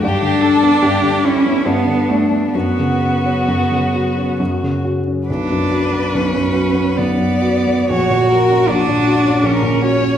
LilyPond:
<<
  \new Staff \with { instrumentName = "Violin" } { \time 3/4 \key fis \phrygian \tempo 4 = 71 g'8 a'8 g'8 e'8 d'4 | fis'2~ fis'8 r8 | b'2 d''4 | cis''8 ais'8 fis'4 ais'8 cis''8 | }
  \new Staff \with { instrumentName = "Cello" } { \time 3/4 \key fis \phrygian d'4. cis'8 b8 a8 | b2 r4 | d'4 cis'4 b4 | fis'4 d'4 cis'4 | }
  \new Staff \with { instrumentName = "Grand piano" } { \clef bass \time 3/4 \key fis \phrygian g,16 d16 d'16 b16 g,16 d16 d'16 b16 g,16 d16 d'16 b16 | fis,16 cis16 fis'16 cis'16 fis,16 cis16 fis'16 cis'16 fis,16 cis16 fis'16 cis'16 | b,,16 fis,16 fis'16 b16 b,,16 fis,16 fis'16 b16 b,,16 fis,16 fis'16 b16 | ais,,16 ais,16 fis'16 cis'16 ais,,16 ais,16 fis'16 cis'16 ais,,16 ais,16 fis'16 cis'16 | }
>>